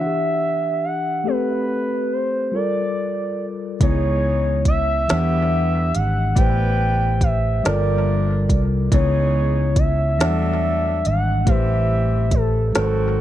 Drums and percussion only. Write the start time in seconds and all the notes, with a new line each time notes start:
3.81 kick, closed hi-hat
4.65 kick, closed hi-hat
5.09 snare, closed hi-hat
5.95 closed hi-hat
6.36 kick, closed hi-hat
7.21 kick, closed hi-hat
7.65 snare, closed hi-hat
8.49 kick, closed hi-hat
8.92 kick, closed hi-hat
9.76 kick, closed hi-hat
10.20 snare, closed hi-hat
11.05 closed hi-hat
11.47 kick, closed hi-hat
12.31 kick, closed hi-hat
12.75 snare, closed hi-hat